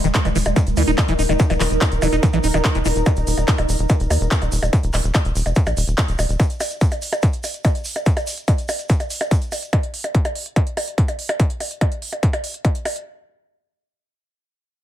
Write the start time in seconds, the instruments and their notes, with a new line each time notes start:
Already playing: synth drone D#4 A#4, ambient pad D#4 D#5
0.00 ambient pad A#4
0.04 analog synth bass D#1, acid bass D#3, closed hi-hat, shaker
0.15 acid bass D#3, kick, clap, closed hi-hat, shaker
0.25 analog synth bass D#1, acid bass E3, closed hi-hat, percussion blips, shaker
0.35 analog synth bass D#1, acid bass E3, open hi-hat, shaker
0.46 analog synth bass D#1, ambient pad A#5, closed hi-hat, percussion blips, shaker
0.56 acid bass D#3, kick, closed hi-hat, shaker
0.67 analog synth bass D#1, closed hi-hat, shaker
0.77 analog synth bass D#2, acid bass E3, open hi-hat, percussion blips, shaker
0.86 analog synth bass D#1, acid bass D#4, closed hi-hat, shaker
0.98 acid bass D#3, kick, clap, closed hi-hat, percussion blips, shaker
1.08 analog synth bass D#1, acid bass E3, closed hi-hat, shaker
1.19 analog synth bass D#1, acid bass D#4, open hi-hat, shaker
1.29 analog synth bass D#1, acid bass D#3, closed hi-hat, percussion blips, shaker
1.39 acid bass D#3, kick, closed hi-hat, shaker
1.50 analog synth bass D#1, acid bass E3, closed hi-hat, percussion blips, shaker
1.60 analog synth bass D#1, acid bass E3, clap, open hi-hat, shaker
1.71 analog synth bass D#1, closed hi-hat, shaker
1.81 acid bass D#3, kick, clap, closed hi-hat, percussion blips, shaker
1.92 analog synth bass D#1, closed hi-hat, shaker
2.02 analog synth bass D#1, acid bass E3, open hi-hat, percussion blips, shaker
2.12 analog synth bass E1, acid bass D#4, closed hi-hat, shaker
2.23 acid bass D#3, kick, closed hi-hat, shaker
2.33 analog synth bass A#1, acid bass E3, closed hi-hat, percussion blips, shaker
2.44 analog synth bass D#1, acid bass D#4, open hi-hat, shaker
2.54 analog synth bass D#1, acid bass D#3, closed hi-hat, percussion blips, shaker
2.65 acid bass D#3, kick, clap, closed hi-hat, shaker
2.75 analog synth bass D#1, acid bass E3, closed hi-hat, shaker
2.85 analog synth bass D#1, acid bass E3, open hi-hat, percussion blips, shaker
2.95 analog synth bass D#1, closed hi-hat, shaker
3.06 kick, closed hi-hat, percussion blips, shaker
3.16 analog synth bass D#1, closed hi-hat, shaker
3.27 analog synth bass D#1, open hi-hat, shaker
3.38 analog synth bass D#1, closed hi-hat, percussion blips, shaker
3.48 kick, clap, closed hi-hat, shaker
3.58 analog synth bass D#1, closed hi-hat, percussion blips, shaker
3.69 analog synth bass D#1, open hi-hat, shaker
3.78 analog synth bass D#1, closed hi-hat, shaker
3.89 kick, closed hi-hat, percussion blips, shaker
4.00 analog synth bass D#1, closed hi-hat, shaker
4.10 analog synth bass D#2, open hi-hat, percussion blips, shaker
4.21 analog synth bass D#1, closed hi-hat, shaker
4.31 kick, clap, closed hi-hat, shaker
4.42 analog synth bass D#1, closed hi-hat, percussion blips, shaker
4.52 analog synth bass D#1, open hi-hat, shaker
4.62 analog synth bass D#1, closed hi-hat, percussion blips, shaker
4.73 kick, closed hi-hat, shaker
4.83 analog synth bass D#1, closed hi-hat, shaker
4.93 analog synth bass D#1, clap, open hi-hat, percussion blips, shaker
5.04 analog synth bass D#1, closed hi-hat, shaker
5.14 kick, clap, closed hi-hat, percussion blips, shaker
5.25 analog synth bass D#1, closed hi-hat, shaker
5.35 analog synth bass D#1, open hi-hat, shaker
5.46 analog synth bass E1, closed hi-hat, percussion blips, shaker
5.55 kick, closed hi-hat, shaker
5.66 analog synth bass A#1, closed hi-hat, percussion blips, shaker
5.77 analog synth bass D#1, open hi-hat, shaker
5.87 analog synth bass D#1, closed hi-hat, shaker
5.98 kick, clap, closed hi-hat, percussion blips, shaker
6.08 analog synth bass D#1, closed hi-hat, shaker
6.19 analog synth bass D#1, open hi-hat, percussion blips, shaker
6.29 analog synth bass D#1, closed hi-hat, shaker
6.40 kick, closed hi-hat, percussion blips, shaker
6.50 closed hi-hat, shaker
6.60 open hi-hat, percussion blips, shaker
6.70 closed hi-hat, shaker
6.81 kick, closed hi-hat, shaker
6.91 closed hi-hat, percussion blips, shaker
7.02 open hi-hat, shaker
7.12 closed hi-hat, percussion blips, shaker
7.22 kick, closed hi-hat, shaker
7.33 closed hi-hat, shaker
7.44 open hi-hat, percussion blips, shaker
7.54 closed hi-hat, shaker
7.64 kick, closed hi-hat, percussion blips, shaker
7.75 closed hi-hat, shaker
7.84 open hi-hat, shaker
7.96 closed hi-hat, percussion blips, shaker
8.06 kick, closed hi-hat, shaker
8.17 closed hi-hat, percussion blips, shaker
8.27 open hi-hat, shaker
8.38 closed hi-hat, shaker
8.48 kick, closed hi-hat, percussion blips, shaker
8.58 closed hi-hat, shaker
8.68 open hi-hat, percussion blips, shaker
8.79 closed hi-hat, shaker
8.89 kick, closed hi-hat, shaker
9.00 closed hi-hat, percussion blips, shaker
9.10 open hi-hat, shaker
9.21 closed hi-hat, percussion blips, shaker
9.31 kick, closed hi-hat, shaker
9.41 closed hi-hat, shaker
9.52 open hi-hat, percussion blips, shaker
9.62 closed hi-hat, shaker
9.73 kick, closed hi-hat, percussion blips
9.83 closed hi-hat
9.94 open hi-hat
10.04 closed hi-hat, percussion blips
10.15 kick, closed hi-hat
10.25 closed hi-hat, percussion blips
10.35 open hi-hat
10.46 closed hi-hat
10.56 kick, closed hi-hat, percussion blips
10.67 closed hi-hat
10.77 open hi-hat, percussion blips
10.88 closed hi-hat
10.98 kick, closed hi-hat
11.08 closed hi-hat, percussion blips
11.19 open hi-hat
11.29 closed hi-hat, percussion blips
11.40 kick, closed hi-hat
11.50 closed hi-hat
11.60 open hi-hat, percussion blips
11.71 closed hi-hat
11.81 kick, closed hi-hat, percussion blips
11.92 closed hi-hat
12.02 open hi-hat
12.13 closed hi-hat, percussion blips
12.23 kick, closed hi-hat
12.33 closed hi-hat, percussion blips
12.44 open hi-hat
12.54 closed hi-hat
12.65 kick, closed hi-hat, percussion blips
12.75 closed hi-hat
12.85 open hi-hat, percussion blips
12.96 closed hi-hat